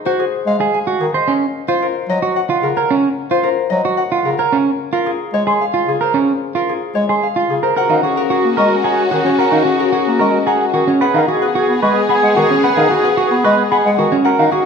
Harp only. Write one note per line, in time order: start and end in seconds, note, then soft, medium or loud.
0.00 0.18 G#4 soft
0.00 1.14 D#5 medium
0.00 0.46 F5 medium
0.00 1.40 F#5 medium
0.00 0.73 G#5 medium
0.05 1.30 C5 medium
0.19 0.99 G#4 medium
0.47 4.37 F5 medium
0.74 1.30 G#5 medium
1.01 1.30 G#4 medium
1.15 2.08 D#5 medium
1.68 3.29 C5 medium
1.82 2.62 A#4 medium
2.10 3.69 D#5 medium
2.36 3.96 F#5 medium
2.63 3.42 A#4 medium
2.77 4.37 C#5 medium
3.31 6.01 C5 medium
3.43 4.24 A#4 medium
3.70 7.60 D#5 medium
3.97 4.54 F#5 medium
4.25 4.54 A#4 medium
4.38 5.32 C#5 medium
4.93 6.54 A#4 medium
5.06 5.87 G#4 medium
5.34 6.94 C#5 medium
5.61 7.22 F5 medium
5.89 6.68 G#4 soft
6.02 7.62 C5 soft
6.56 8.16 A#4 medium
6.69 7.49 G#4 soft
6.95 9.24 C#5 medium
7.23 11.03 F5 medium
7.50 7.79 G#4 soft
7.63 7.79 C5 soft
7.77 8.83 F#5 medium
8.04 8.30 G#4 medium
8.17 9.78 A#4 medium
8.31 9.11 G#4 medium
8.58 10.20 D#5 medium
8.84 9.39 F#5 medium
9.12 9.66 G#4 medium
9.26 10.87 C#5 medium
9.40 10.46 F#5 medium
9.67 9.92 G#4 medium
9.80 11.03 A#4 medium
9.94 10.73 G#4 medium
10.21 11.82 D#5 medium
10.47 11.00 F#5 medium
10.75 11.27 G#4 medium
10.88 12.49 C#5 soft
11.01 12.09 F#5 medium
11.28 11.55 G#4 medium
11.42 13.03 B4 medium
11.56 12.35 G#4 medium
11.83 13.43 D#5 medium
12.10 12.62 F#5 medium
12.37 12.90 G#4 medium
12.50 14.10 C#5 medium
12.64 13.70 F#5 medium
12.91 13.17 G#4 medium
13.04 14.28 B4 medium
13.18 13.96 G#4 medium
13.44 14.65 D#5 medium
13.71 14.23 F#5 medium
13.98 14.27 G#4 medium
14.12 14.65 C#5 medium
14.24 14.65 F#5 medium
14.52 14.65 G#4 medium